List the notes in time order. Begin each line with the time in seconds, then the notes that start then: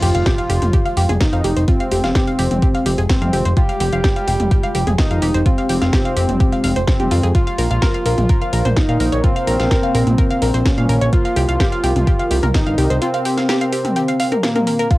Already playing: G#3 F4 G4, impact
0.02 F1 G4, open hi-hat
0.15 F1 F5, closed hi-hat
0.26 G4, kick, snare, closed hi-hat
0.38 F5, closed hi-hat
0.50 F1 G4, open hi-hat
0.62 F1, closed hi-hat, mid tom
0.73 G4, kick, closed hi-hat
0.86 F5, closed hi-hat
0.97 F1 G4, open hi-hat
1.09 F1 G#4, closed hi-hat, mid tom
1.21 D#4, kick, snare, closed hi-hat
1.33 F2 F5, closed hi-hat
1.44 F1 G4, open hi-hat
1.56 F1 C5, closed hi-hat
1.68 C4 F4, kick, closed hi-hat
1.80 F5, closed hi-hat
1.91 F1 G4, open hi-hat
2.04 F1 F5, snare, closed hi-hat
2.15 G4, kick, snare, closed hi-hat
2.27 F5, closed hi-hat
2.39 F1 G4, open hi-hat
2.51 F1, closed hi-hat, mid tom
2.62 G4, kick, closed hi-hat
2.75 F5, closed hi-hat
2.86 F1 G4, open hi-hat
2.98 F1 G#4, closed hi-hat
3.10 C4, kick, snare, closed hi-hat
3.22 F2 F5, closed hi-hat, mid tom
3.33 F1 G4, open hi-hat
3.45 F1 C5, closed hi-hat
3.57 F4 G4, kick, closed hi-hat
3.69 F5, closed hi-hat
3.80 F1 G4, open hi-hat
3.93 F1 F5, closed hi-hat
4.04 G4, kick, snare, closed hi-hat
4.16 F5, closed hi-hat
4.28 F1 G4, open hi-hat
4.40 F1, closed hi-hat, mid tom
4.51 G4, kick, closed hi-hat
4.63 F5, closed hi-hat
4.75 F1 G4, open hi-hat
4.87 F1 G#4, closed hi-hat, mid tom
4.99 D#4, kick, snare, closed hi-hat
5.11 F2 F5, closed hi-hat
5.22 F1 G4, open hi-hat
5.34 F1 C5, closed hi-hat
5.46 C4 F4, kick, closed hi-hat
5.58 F5, closed hi-hat
5.69 F1 G4, open hi-hat
5.82 F1 F5, snare, closed hi-hat
5.93 G4, kick, snare, closed hi-hat
6.05 F5, closed hi-hat
6.17 F1 G4, open hi-hat
6.29 F1, closed hi-hat, mid tom
6.40 G4, kick, closed hi-hat
6.52 F5, closed hi-hat
6.64 F1 F5, open hi-hat
6.76 F1 C5, closed hi-hat
6.87 C4 G5, kick, snare, closed hi-hat
7.00 F1 G4, closed hi-hat, mid tom
7.11 F2 F4, open hi-hat
7.23 F2 G#4, closed hi-hat
7.35 A#3 F4 A#4 C5, kick, closed hi-hat
7.47 F5, closed hi-hat
7.58 A#1 A#4, open hi-hat
7.71 A#1 F5, closed hi-hat
7.82 A#4, kick, snare, closed hi-hat
7.94 F5, closed hi-hat
8.06 A#1 A#4, open hi-hat
8.18 A#1, closed hi-hat, mid tom
8.29 A#4, kick, closed hi-hat
8.41 F5, closed hi-hat
8.53 A#1 A#4, open hi-hat
8.65 A#1 C5, closed hi-hat, mid tom
8.76 D#4, kick, snare, closed hi-hat
8.89 A#2 F5, closed hi-hat
9.00 A#1 A#4, open hi-hat
9.12 A#1 C#5, closed hi-hat
9.24 C4 F4, kick, closed hi-hat
9.36 F5, closed hi-hat
9.47 A#1 A#4, open hi-hat
9.60 A#1 F5, snare, closed hi-hat
9.71 A#4, kick, snare, closed hi-hat
9.83 F5, closed hi-hat
9.95 A#1 A#4, open hi-hat
10.07 A#1, closed hi-hat, mid tom
10.18 A#4, kick, closed hi-hat
10.30 F5, closed hi-hat
10.42 A#1 A#4, open hi-hat
10.54 A#1 C5, closed hi-hat
10.65 C#4, kick, snare, closed hi-hat
10.78 A#2 F5, closed hi-hat, mid tom
10.89 A#1 A#4, open hi-hat
11.01 A#1 C#5, closed hi-hat
11.13 C4 F4 G4 A#4 F5, kick, closed hi-hat
11.25 F5, closed hi-hat
11.36 C2 G4, open hi-hat
11.49 C2 F5, closed hi-hat
11.60 G4, kick, snare, closed hi-hat
11.72 F5, closed hi-hat
11.84 C2 G4, open hi-hat
11.96 C2, closed hi-hat, mid tom
12.07 G4, kick, closed hi-hat
12.19 F5, closed hi-hat
12.31 C2 G4, open hi-hat
12.43 C2 A#4, closed hi-hat, mid tom
12.54 D#4, kick, snare, closed hi-hat
12.67 G1 F5, closed hi-hat
12.78 C2 G4, open hi-hat
12.90 C2 C5, closed hi-hat
13.02 C4 F4, closed hi-hat
13.14 F5, closed hi-hat
13.25 G4, open hi-hat
13.38 F5, snare, closed hi-hat
13.49 G4, snare, closed hi-hat
13.61 F5, closed hi-hat
13.73 G4, open hi-hat
13.85 closed hi-hat, mid tom
13.96 G4, closed hi-hat
14.08 F5, closed hi-hat
14.20 F5, open hi-hat
14.32 A#4, closed hi-hat, mid tom
14.43 A#3, snare, closed hi-hat
14.56 A#4, closed hi-hat, mid tom
14.67 A#4, open hi-hat
14.79 A#4, closed hi-hat
14.91 G#3 F4, kick, closed hi-hat